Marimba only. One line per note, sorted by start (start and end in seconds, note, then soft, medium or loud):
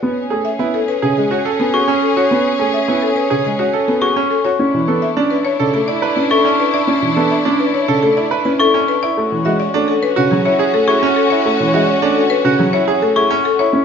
0.45 0.64 E5 medium
0.74 0.92 A4 medium
0.88 1.07 B4 medium
1.17 1.35 G#4 medium
1.31 1.50 C#5 medium
1.60 1.78 A4 medium
1.74 1.92 G#4 medium
2.02 2.21 A4 medium
2.17 2.35 C#5 medium
2.74 2.92 E5 medium
3.02 3.21 A4 medium
3.16 3.35 B4 medium
3.45 3.63 G#4 medium
3.59 3.78 C#5 medium
3.88 4.07 A4 medium
4.02 4.21 G#4 medium
4.31 4.49 A4 medium
4.45 4.63 C#5 medium
5.02 5.21 E5 medium
5.31 5.49 B4 medium
5.45 5.63 C#5 medium
5.74 5.92 A4 medium
5.88 6.06 D5 medium
6.17 6.35 B4 medium
6.31 6.49 A4 medium
6.60 6.78 B4 medium
6.74 6.92 D5 medium
7.31 7.49 E5 medium
7.60 7.78 B4 medium
7.74 7.92 C#5 medium
8.03 8.21 A4 medium
8.17 8.35 D5 medium
8.45 8.64 B4 medium
8.60 8.78 A4 medium
8.88 9.07 B4 medium
9.03 9.21 D5 medium
9.45 9.64 E5 medium
9.60 9.78 D5 medium
9.88 10.06 A4 medium
10.03 10.21 B4 medium
10.31 10.49 G#4 medium
10.46 10.64 C#5 medium
10.74 10.92 A4 medium
10.88 11.06 G#4 medium
11.16 11.35 A4 medium
11.30 11.49 C#5 medium
11.73 11.92 E5 medium
11.87 12.06 D5 medium
12.16 12.35 A4 medium
12.30 12.49 B4 medium
12.59 12.78 G#4 medium
12.73 12.92 C#5 medium
13.02 13.21 A4 medium
13.16 13.35 G#4 medium
13.45 13.64 A4 medium
13.59 13.78 C#5 medium